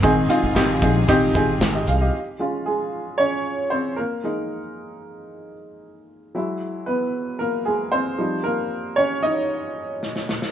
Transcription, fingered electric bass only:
\new Staff \with { instrumentName = "Fingered electric bass" } { \clef bass \time 4/4 \key aes \major \tempo 4 = 114 aes,,8 r16 aes,,16 aes,,8 bes,,8 aes,,8 aes,,8 aes,,8 c,8 | r1 | r1 | r1 |
r1 | }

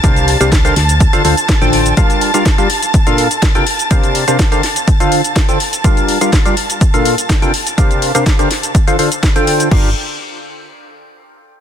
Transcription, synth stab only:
\new Staff \with { instrumentName = "Synth stab" } { \time 4/4 \key g \minor \tempo 4 = 124 <c d' g' bes' c'' f''>8. <c d' g' bes' c'' f''>16 r16 <d d' g' bes' c'' f''>16 r8. <d d' f' a' c'' f''>16 <d d' f' a' c'' f''>16 r8 <d d' f' a' c'' g''>8. | <g d' f' g' bes' f''>8. <g d' f' g' bes' f''>16 r16 <g d' f' g' bes' f''>16 r8. <bes, d' f' a' bes' f''>8 r8 <c d' f' a' bes' g''>16 r8 | <c d' g' bes' c'' f''>8. <c d' g' bes' c'' f''>16 r16 <d d' g' bes' c'' f''>16 r8. <d d' f' a' c'' f''>8 r8 <d d' f' a' c'' g''>16 r8 | <g d' f' g' bes' f''>8. <g d' f' g' bes' f''>16 r16 <g d' f' g' bes' f''>16 r8. <bes, d' f' a' bes' f''>8 r8 <c d' f' a' bes' g''>16 r8 |
<c d' g' bes' c'' f''>8. <c d' g' bes' c'' f''>16 r16 <d d' g' bes' c'' f''>16 r8. <d d' f' a' c'' f''>16 <d d' f' a' c'' f''>16 r8 <d d' f' a' c'' g''>8. | <d' f' g' bes' f''>8 r2. r8 | }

